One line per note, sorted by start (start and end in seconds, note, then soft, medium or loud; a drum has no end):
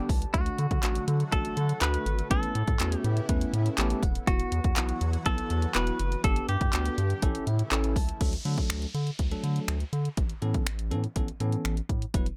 0.00 2.27 D3 medium
0.00 0.32 G3 medium
0.00 0.32 B3 medium
0.00 0.32 G4 medium
0.09 0.25 C#2 loud
0.09 0.32 A5 medium
0.09 kick medium
0.09 open hi-hat medium
0.22 closed hi-hat medium
0.34 0.50 D2 loud
0.34 2.29 F#3 medium
0.34 0.57 A3 medium
0.34 4.24 A3 medium
0.34 0.57 D4 medium
0.34 1.04 F#4 loud
0.34 0.57 F#4 medium
0.34 2.29 F#4 medium
0.34 kick loud
0.34 closed hi-hat medium
0.46 closed hi-hat medium
0.58 0.67 D3 loud
0.58 closed hi-hat medium
0.71 0.79 D3 loud
0.71 kick medium
0.71 closed hi-hat medium
0.83 0.99 A1 medium
0.83 1.06 A3 medium
0.83 1.06 D4 medium
0.83 1.06 F#4 medium
0.83 clap loud
0.83 clap medium
0.83 closed hi-hat loud
0.95 closed hi-hat medium
1.08 1.24 D3 loud
1.08 closed hi-hat medium
1.20 closed hi-hat soft
1.32 1.49 A1 loud
1.32 1.55 A3 medium
1.32 1.55 D4 medium
1.32 1.55 F#4 medium
1.32 1.81 A4 medium
1.32 kick medium
1.32 closed hi-hat medium
1.45 closed hi-hat medium
1.57 1.73 D3 loud
1.57 closed hi-hat medium
1.69 closed hi-hat medium
1.81 1.97 D2 medium
1.81 2.04 A3 medium
1.81 2.04 D4 medium
1.81 2.04 F#4 medium
1.81 2.27 B4 loud
1.81 clap medium
1.81 clap loud
1.81 closed hi-hat medium
1.94 closed hi-hat medium
2.06 2.22 G#1 medium
2.06 closed hi-hat medium
2.19 closed hi-hat medium
2.30 2.47 A1 loud
2.30 4.26 C#3 medium
2.30 2.53 A3 medium
2.30 2.53 B3 medium
2.30 7.19 B3 medium
2.30 2.54 C#4 medium
2.30 2.54 E4 medium
2.30 4.26 E4 medium
2.30 2.97 A4 medium
2.30 2.54 B4 medium
2.30 kick loud
2.30 closed hi-hat loud
2.43 closed hi-hat medium
2.55 2.63 A2 loud
2.55 closed hi-hat medium
2.68 2.76 A2 medium
2.68 kick medium
2.68 closed hi-hat medium
2.80 2.96 E2 loud
2.80 3.03 A3 medium
2.80 3.03 B3 medium
2.80 3.03 C#4 medium
2.80 3.03 E4 medium
2.80 3.03 F#4 medium
2.80 clap loud
2.80 clap medium
2.80 closed hi-hat loud
2.92 closed hi-hat medium
2.97 3.25 G4 medium
3.04 3.20 A2 loud
3.04 closed hi-hat medium
3.17 closed hi-hat soft
3.29 3.45 E2 loud
3.29 3.52 A3 loud
3.29 3.52 B3 loud
3.29 3.52 C#4 medium
3.29 3.52 E4 loud
3.29 3.52 B4 loud
3.29 kick medium
3.29 closed hi-hat medium
3.41 closed hi-hat medium
3.53 3.69 A2 loud
3.53 closed hi-hat medium
3.66 closed hi-hat medium
3.78 3.94 A1 medium
3.78 4.01 A3 loud
3.78 4.01 B3 medium
3.78 4.01 C#4 medium
3.78 4.01 E4 medium
3.78 4.01 G4 loud
3.78 4.01 A5 medium
3.78 clap medium
3.78 clap loud
3.78 closed hi-hat medium
3.90 closed hi-hat medium
4.03 4.19 D#1 medium
4.03 4.26 F#5 medium
4.03 kick medium
4.03 closed hi-hat medium
4.15 closed hi-hat medium
4.27 4.43 E1 loud
4.27 6.22 E3 medium
4.27 6.22 F#3 medium
4.27 4.50 B3 medium
4.27 4.50 E4 medium
4.27 6.22 F#4 medium
4.27 5.22 F#4 medium
4.27 4.50 F#4 loud
4.27 kick loud
4.27 closed hi-hat loud
4.40 closed hi-hat medium
4.52 4.60 E2 loud
4.52 closed hi-hat medium
4.64 4.72 E2 loud
4.64 kick medium
4.64 closed hi-hat medium
4.76 4.93 B1 loud
4.76 4.99 B3 medium
4.76 4.99 E4 medium
4.76 5.00 F#4 medium
4.76 clap loud
4.76 clap medium
4.76 closed hi-hat loud
4.89 closed hi-hat medium
5.01 5.17 E2 loud
5.01 closed hi-hat medium
5.13 closed hi-hat soft
5.26 5.42 B1 medium
5.26 5.49 B3 medium
5.26 5.49 E4 medium
5.26 5.72 A4 loud
5.26 5.49 A4 loud
5.26 kick medium
5.26 closed hi-hat medium
5.38 closed hi-hat medium
5.50 5.66 E2 loud
5.50 closed hi-hat medium
5.62 closed hi-hat medium
5.75 5.91 E1 loud
5.75 5.98 B3 medium
5.75 5.98 E4 medium
5.75 5.98 F#4 medium
5.75 6.21 B4 loud
5.75 clap loud
5.75 closed hi-hat medium
5.87 closed hi-hat medium
5.99 6.16 F#1 loud
5.99 closed hi-hat medium
6.12 closed hi-hat soft
6.24 6.40 G1 loud
6.24 7.21 D3 medium
6.24 7.21 G3 medium
6.24 6.47 B3 medium
6.24 6.47 D4 medium
6.24 7.21 G4 medium
6.24 6.47 G4 medium
6.24 6.48 A4 loud
6.24 kick loud
6.24 closed hi-hat loud
6.36 closed hi-hat medium
6.49 6.57 G2 loud
6.49 7.43 G4 medium
6.49 closed hi-hat medium
6.61 6.69 G2 loud
6.61 kick medium
6.61 closed hi-hat medium
6.73 6.89 D2 medium
6.73 6.96 B3 medium
6.73 6.96 D4 medium
6.73 6.96 F#4 medium
6.73 clap loud
6.73 clap medium
6.73 closed hi-hat loud
6.86 closed hi-hat medium
6.98 7.14 G2 loud
6.98 closed hi-hat medium
7.10 closed hi-hat soft
7.22 7.39 A1 loud
7.22 8.20 C#3 medium
7.22 8.20 E3 medium
7.22 8.20 A3 medium
7.22 7.45 C#4 loud
7.22 8.20 E4 medium
7.22 7.45 E4 medium
7.22 7.46 A4 loud
7.22 kick loud
7.22 closed hi-hat medium
7.35 closed hi-hat medium
7.47 7.63 A2 loud
7.47 7.70 E5 medium
7.47 closed hi-hat medium
7.59 closed hi-hat medium
7.71 7.97 A1 medium
7.71 7.94 C#4 loud
7.71 7.95 E4 medium
7.71 7.95 A4 loud
7.71 7.95 A5 medium
7.71 clap medium
7.71 clap loud
7.71 closed hi-hat medium
7.84 closed hi-hat medium
7.96 8.12 C#2 medium
7.96 8.19 A5 medium
7.96 kick medium
7.96 open hi-hat medium
8.09 closed hi-hat medium
8.21 8.37 D2 loud
8.21 8.32 F#3 medium
8.21 8.32 A3 medium
8.21 8.32 D4 medium
8.21 8.32 A4 loud
8.21 kick loud
8.21 closed hi-hat medium
8.21 downlifter medium
8.33 closed hi-hat soft
8.45 8.61 D3 loud
8.45 8.85 F#3 medium
8.45 8.85 A3 medium
8.45 8.85 D4 medium
8.45 8.85 A4 loud
8.45 closed hi-hat medium
8.58 kick medium
8.58 closed hi-hat medium
8.70 8.86 D2 loud
8.70 finger snap loud
8.70 closed hi-hat medium
8.82 closed hi-hat medium
8.95 9.11 D3 medium
8.95 closed hi-hat medium
9.07 closed hi-hat soft
9.19 9.35 D2 loud
9.19 kick medium
9.19 closed hi-hat medium
9.31 9.77 F#3 medium
9.31 9.77 A3 medium
9.31 9.77 D4 medium
9.31 9.77 A4 loud
9.31 closed hi-hat medium
9.44 9.60 D3 loud
9.44 closed hi-hat medium
9.56 closed hi-hat medium
9.68 9.84 D2 loud
9.68 finger snap loud
9.68 closed hi-hat medium
9.80 closed hi-hat medium
9.93 10.09 D3 loud
9.93 closed hi-hat medium
10.05 closed hi-hat soft
10.17 10.33 A1 loud
10.17 kick loud
10.17 closed hi-hat medium
10.29 closed hi-hat soft
10.42 10.58 A2 loud
10.42 10.65 E3 medium
10.42 10.65 B3 medium
10.42 10.65 C#4 medium
10.42 10.65 A4 medium
10.42 closed hi-hat medium
10.54 kick medium
10.54 closed hi-hat medium
10.66 10.92 A1 loud
10.66 finger snap loud
10.66 closed hi-hat medium
10.79 closed hi-hat medium
10.91 11.07 A2 medium
10.91 11.03 E3 medium
10.91 11.03 B3 medium
10.91 11.03 C#4 medium
10.91 11.03 A4 loud
10.91 closed hi-hat medium
11.04 closed hi-hat soft
11.16 11.32 A1 loud
11.16 11.27 E3 loud
11.16 11.27 B3 medium
11.16 11.27 C#4 medium
11.16 11.27 A4 loud
11.16 kick medium
11.16 closed hi-hat medium
11.28 closed hi-hat medium
11.40 11.56 A2 loud
11.40 11.75 E3 medium
11.40 11.75 B3 medium
11.40 11.75 C#4 medium
11.40 11.75 A4 loud
11.40 closed hi-hat medium
11.52 closed hi-hat medium
11.65 11.81 A1 loud
11.65 finger snap loud
11.65 closed hi-hat medium
11.77 closed hi-hat medium
11.89 12.05 A2 loud
11.89 kick medium
11.89 closed hi-hat medium
12.02 closed hi-hat soft
12.14 12.30 E1 loud
12.14 12.26 F#3 medium
12.14 12.26 B3 medium
12.14 12.26 E4 medium
12.14 12.26 B4 loud
12.14 kick loud
12.14 closed hi-hat medium
12.26 closed hi-hat soft